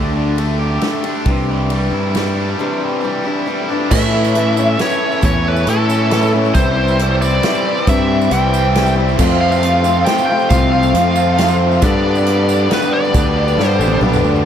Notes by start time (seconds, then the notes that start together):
Already playing: D2 D3 A3 D4 G4
0.17 D3
0.36 D3 A3 D4 G4, ride
0.59 G4
0.80 D3 A3 D4 G4, snare, ride
1.03 A3 D4 G4, ride
1.26 C2 C3 E3 G3 D4 G4, kick, ride
1.51 E3
1.70 E3 G3 D4 G4, ride
1.92 G2 E4
2.14 E3 G3 D4 G4, snare, ride
2.38 D4
2.59 C3 E3 G3 D4 G4
2.83 E3
3.01 E3 G3 D4 G4
3.24 G3 D4 E4 G4
3.46 E3 G3 D4 G4
3.61 A3 B3
3.67 C4 D4 G4
3.72 G3 E4 F4
3.78 G4 A4
3.85 B4 C5
3.90 A2 E3 A3 C#4 E4 A4 C#5 D5 E5, kick, crash, tambourine
4.12 A3 C#4 E4
4.24 tambourine
4.35 E3 A3 C#4 E4, closed hi-hat
4.57 A3 C#4 E4, tambourine
4.79 A2 E3 A3 C#4 E4 C#5, snare, closed hi-hat, tambourine
4.90 tambourine
5.12 tambourine
5.23 E2 A2 E3 A3 C#4 E4 C#5, kick, closed hi-hat, tambourine
5.44 A3 C#4 E4
5.48 B4
5.56 tambourine
5.66 A2 E3 A3 C#4 E4 A4, closed hi-hat
5.88 A3 C#4 E4, tambourine
6.10 A2 E3 A3 C#4 E4, snare, closed hi-hat, tambourine
6.23 tambourine
6.33 A3 C#4 E4
6.45 tambourine
6.54 C2 C3 E3 G3 C4 E4 G4 C5, kick, closed hi-hat, tambourine
6.77 G3 C4 E4
6.88 tambourine
6.98 E3 G3 C4 E4, closed hi-hat
7.22 G3 C4 E4 D5, tambourine
7.43 C3 E3 G3 C4 E4, snare, closed hi-hat, tambourine
7.55 tambourine
7.77 tambourine
7.87 G2 C3 E3 G3 C4 E4 E5, kick, closed hi-hat, tambourine
8.09 G3 C4 E4
8.21 tambourine
8.31 C2 E3 G3 C4 E4 G5, closed hi-hat
8.53 G3 C4 E4, tambourine
8.75 C3 E3 G3 C4 E4, snare, closed hi-hat
8.86 tambourine
8.96 C4 E4
9.00 G3
9.08 tambourine
9.18 F2 C3 F3 A3 C4 F4 A4 C5, kick, crash, tambourine
9.41 F3 A3 C4 F4 F5
9.52 F5, tambourine
9.63 F3 A3 C4 F4, closed hi-hat
9.84 F3 A3 C4 F4, tambourine
10.05 F2 C3 F3 A3 G5, snare, closed hi-hat, tambourine
10.09 C4 F4
10.18 tambourine
10.26 C4 F4 G5
10.31 F3 A3
10.40 tambourine
10.49 C2 F2 C3 F3 A3 C4 F5, kick, closed hi-hat, tambourine
10.53 F4
10.72 F3 A3 C4 F4 F5
10.83 tambourine
10.94 F2 F3 A3 C4, closed hi-hat
10.99 F4
11.16 F3 A3 C4 F4, tambourine
11.38 F2 C3 F3 A3 C4 F4, snare, closed hi-hat, tambourine
11.48 tambourine
11.72 tambourine
11.82 G2 D3 G3 B3 D4 G4 A4 B4 D5, kick, closed hi-hat, tambourine
12.05 G3 B3 D4 G4
12.15 tambourine
12.26 G3 B3 D4 G4 A4, closed hi-hat
12.48 G3 B3 D4 G4, tambourine
12.70 G2 D3 G3 B3 D4 G4 A4 B4, snare, closed hi-hat, tambourine
12.82 tambourine
12.94 D5
13.04 tambourine
13.13 D2 G2 D3 G3 B3 D4 G4 A4, kick, closed hi-hat, tambourine
13.26 tambourine
13.37 G3 B3 D4 G4
13.48 tambourine
13.58 G2 G3 B3 D4 A4, snare
13.62 G4
13.67 C5
13.79 A1 D4 G4 A4, tambourine
13.83 G3 B3
13.88 high tom, tambourine
14.01 B1 G2 D3 G3 B3 D4 A4, mid tom
14.06 G4
14.13 mid tom, tambourine
14.24 D2, tambourine
14.36 tambourine